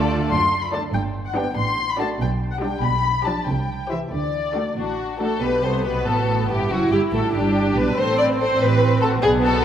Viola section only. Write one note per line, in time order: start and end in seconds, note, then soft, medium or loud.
0.00 0.30 A3 medium
0.00 0.32 F4 medium
0.74 0.89 A3 soft
0.74 0.89 D4 medium
1.36 1.52 B3 medium
1.36 1.52 D4 medium
2.00 2.15 A3 medium
2.00 2.16 D4 medium
2.62 2.79 G3 medium
2.62 2.78 D4 medium
3.26 3.43 F3 soft
3.26 3.43 D4 soft
3.91 4.07 E3 soft
3.91 4.07 E4 medium
4.56 4.73 A3 soft
4.56 4.73 D4 soft
5.21 5.38 A3 soft
5.21 5.38 D4 soft
5.44 6.67 B3 medium
6.70 7.33 E4 medium
7.33 7.97 D4 soft
7.98 9.20 C4 medium
9.24 9.65 B3 medium